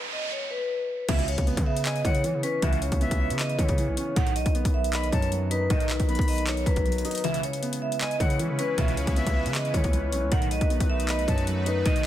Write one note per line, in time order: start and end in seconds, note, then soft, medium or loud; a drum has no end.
0.00 riser medium
0.13 0.28 D#5 medium
0.32 0.47 C#5 medium
0.51 1.05 B4 medium
1.08 1.25 C#2 loud
1.08 1.37 C#2 loud
1.08 1.25 B2 loud
1.08 2.05 C#3 medium
1.08 1.25 E3 loud
1.08 1.24 E5 loud
1.08 kick loud
1.08 closed hi-hat medium
1.08 crash loud
1.19 closed hi-hat medium
1.28 1.44 C#5 medium
1.28 closed hi-hat medium
1.38 1.56 C#2 loud
1.38 kick loud
1.38 closed hi-hat medium
1.47 2.43 B3 medium
1.47 closed hi-hat medium
1.57 2.03 C#3 loud
1.57 kick loud
1.57 closed hi-hat medium
1.66 1.82 E5 medium
1.77 closed hi-hat medium
1.85 2.01 D#5 medium
1.85 2.04 G#5 medium
1.85 clap loud
1.85 closed hi-hat loud
1.96 closed hi-hat medium
2.05 2.25 C#3 loud
2.05 2.23 E3 medium
2.05 2.41 C#5 medium
2.05 2.23 F#5 medium
2.05 kick loud
2.05 closed hi-hat medium
2.15 closed hi-hat medium
2.24 2.36 E3 loud
2.24 3.20 E3 medium
2.24 closed hi-hat medium
2.34 2.43 C#3 medium
2.43 3.39 C#4 medium
2.43 2.59 B4 medium
2.43 closed hi-hat medium
2.62 2.91 C#2 loud
2.62 2.79 C#2 loud
2.62 2.79 B2 loud
2.62 3.59 C#3 loud
2.62 2.79 E3 loud
2.62 2.78 E5 loud
2.62 kick loud
2.62 closed hi-hat medium
2.73 closed hi-hat medium
2.82 2.97 C#5 medium
2.82 closed hi-hat medium
2.92 3.10 C#2 loud
2.92 kick loud
2.92 closed hi-hat medium
3.01 3.97 B3 loud
3.01 3.37 E5 medium
3.01 closed hi-hat medium
3.11 3.32 C#2 loud
3.11 kick loud
3.11 closed hi-hat medium
3.20 3.36 E5 medium
3.30 3.57 C#3 loud
3.30 closed hi-hat medium
3.39 3.55 D#5 medium
3.39 clap loud
3.39 closed hi-hat medium
3.50 closed hi-hat medium
3.59 3.90 C#3 loud
3.59 3.77 E3 medium
3.59 4.13 C#5 medium
3.59 kick loud
3.59 closed hi-hat medium
3.69 kick loud
3.69 closed hi-hat medium
3.78 4.16 E3 medium
3.78 closed hi-hat medium
3.88 3.97 B1 medium
3.97 4.16 C#4 medium
3.97 closed hi-hat medium
4.16 4.45 B1 loud
4.16 4.33 B1 medium
4.16 4.33 A2 loud
4.16 5.12 D#3 medium
4.16 4.33 D#3 loud
4.16 4.32 F#5 loud
4.16 kick loud
4.16 closed hi-hat medium
4.27 closed hi-hat medium
4.36 4.51 D#5 medium
4.36 closed hi-hat medium
4.46 4.64 B1 loud
4.46 kick loud
4.46 closed hi-hat medium
4.55 5.51 B3 medium
4.55 closed hi-hat medium
4.65 5.11 B1 loud
4.65 kick loud
4.65 closed hi-hat medium
4.74 4.90 E5 medium
4.84 closed hi-hat medium
4.93 5.09 D#5 medium
4.93 5.12 B5 medium
4.93 clap loud
4.93 closed hi-hat loud
5.04 closed hi-hat medium
5.12 5.68 F#2 loud
5.12 5.30 F#3 medium
5.12 5.49 C#5 medium
5.12 5.31 A5 medium
5.12 kick loud
5.12 closed hi-hat medium
5.22 closed hi-hat medium
5.32 6.28 F#3 medium
5.32 closed hi-hat medium
5.51 6.47 D#4 medium
5.51 5.67 B4 medium
5.51 closed hi-hat medium
5.70 5.98 B1 loud
5.70 5.87 B1 medium
5.70 5.87 A2 loud
5.70 5.87 D#3 loud
5.70 6.66 D#3 medium
5.70 5.86 D#5 loud
5.70 kick loud
5.70 closed hi-hat medium
5.80 closed hi-hat medium
5.89 6.05 B4 medium
5.89 clap loud
5.89 closed hi-hat medium
6.00 6.18 B1 loud
6.00 kick loud
6.00 closed hi-hat medium
6.08 7.05 B3 medium
6.08 6.45 B5 medium
6.08 closed hi-hat medium
6.15 6.64 B1 loud
6.15 kick loud
6.15 closed hi-hat medium
6.21 closed hi-hat medium
6.28 6.44 D#5 medium
6.28 open hi-hat medium
6.38 closed hi-hat medium
6.47 6.63 C#5 medium
6.47 clap loud
6.47 closed hi-hat loud
6.57 closed hi-hat medium
6.66 7.03 B1 loud
6.66 6.84 F#3 medium
6.66 7.20 B4 medium
6.66 kick loud
6.66 closed hi-hat medium
6.76 kick loud
6.76 closed hi-hat medium
6.86 7.24 F#3 medium
6.86 closed hi-hat soft
6.92 closed hi-hat medium
6.98 closed hi-hat medium
7.05 7.24 D#4 medium
7.05 closed hi-hat medium
7.11 closed hi-hat medium
7.15 closed hi-hat medium
7.18 closed hi-hat medium
7.24 7.40 C#2 loud
7.24 7.40 B2 loud
7.24 8.20 C#3 medium
7.24 7.40 E3 loud
7.24 10.29 G#3 medium
7.24 10.29 C#4 medium
7.24 10.29 E4 medium
7.24 10.29 B4 medium
7.24 7.40 E5 loud
7.24 closed hi-hat medium
7.34 closed hi-hat medium
7.43 7.59 C#5 medium
7.43 closed hi-hat medium
7.53 closed hi-hat medium
7.62 8.59 B3 medium
7.62 closed hi-hat medium
7.73 closed hi-hat medium
7.82 7.97 E5 medium
7.92 closed hi-hat medium
8.01 8.17 D#5 loud
8.01 8.19 G#5 medium
8.01 clap loud
8.01 closed hi-hat loud
8.11 closed hi-hat medium
8.20 8.41 C#3 loud
8.20 8.38 E3 medium
8.20 8.57 C#5 medium
8.20 8.38 F#5 medium
8.20 kick loud
8.20 closed hi-hat medium
8.30 closed hi-hat medium
8.39 8.51 E3 loud
8.39 9.36 E3 medium
8.39 closed hi-hat medium
8.50 8.58 C#3 loud
8.58 9.55 C#4 medium
8.58 8.74 B4 medium
8.58 closed hi-hat medium
8.78 9.06 C#2 loud
8.78 8.94 C#2 loud
8.78 8.94 B2 loud
8.78 9.74 C#3 loud
8.78 8.94 E3 loud
8.78 8.94 E5 loud
8.78 kick loud
8.78 closed hi-hat medium
8.88 closed hi-hat medium
8.97 9.13 C#5 medium
8.97 closed hi-hat medium
9.07 9.26 C#2 loud
9.07 kick loud
9.07 closed hi-hat medium
9.16 10.13 B3 loud
9.16 9.52 E5 medium
9.16 closed hi-hat medium
9.27 9.47 C#2 loud
9.27 kick loud
9.27 closed hi-hat medium
9.36 9.51 E5 medium
9.46 9.73 C#3 loud
9.46 closed hi-hat medium
9.55 9.70 D#5 medium
9.55 clap loud
9.55 closed hi-hat loud
9.65 closed hi-hat medium
9.74 9.84 C#3 loud
9.74 9.92 E3 medium
9.74 10.28 C#5 medium
9.74 kick loud
9.74 closed hi-hat medium
9.84 10.14 C#2 loud
9.84 kick loud
9.84 closed hi-hat medium
9.93 10.32 E3 medium
9.93 closed hi-hat medium
10.12 10.24 B1 loud
10.12 10.32 C#4 medium
10.12 closed hi-hat medium
10.23 10.31 C#2 loud
10.32 10.48 B1 medium
10.32 10.60 B1 loud
10.32 10.48 A2 loud
10.32 10.48 D#3 loud
10.32 12.07 A3 medium
10.32 12.07 D#4 medium
10.32 12.07 F#4 medium
10.32 12.07 B4 medium
10.32 10.48 F#5 loud
10.32 kick loud
10.32 closed hi-hat medium
10.42 closed hi-hat medium
10.51 10.67 D#5 medium
10.51 closed hi-hat medium
10.61 10.80 B1 loud
10.61 kick loud
10.61 closed hi-hat medium
10.70 11.66 B3 medium
10.70 closed hi-hat medium
10.80 11.26 B1 loud
10.80 kick loud
10.80 closed hi-hat medium
10.90 11.05 E5 medium
11.00 closed hi-hat medium
11.08 11.24 D#5 medium
11.08 11.27 B5 medium
11.08 clap loud
11.08 closed hi-hat loud
11.19 closed hi-hat medium
11.28 11.83 F#2 loud
11.28 11.46 F#3 medium
11.28 11.64 C#5 medium
11.28 11.46 A5 medium
11.28 kick loud
11.28 closed hi-hat medium
11.38 closed hi-hat medium
11.47 12.07 F#3 medium
11.47 closed hi-hat medium
11.66 12.07 D#4 medium
11.66 11.82 B4 medium
11.66 closed hi-hat medium
11.86 12.07 B1 loud
11.86 12.02 B1 medium
11.86 12.02 A2 loud
11.86 12.02 D#3 loud
11.86 12.07 D#3 medium
11.86 12.01 D#5 loud
11.86 kick loud
11.86 closed hi-hat medium
11.96 closed hi-hat medium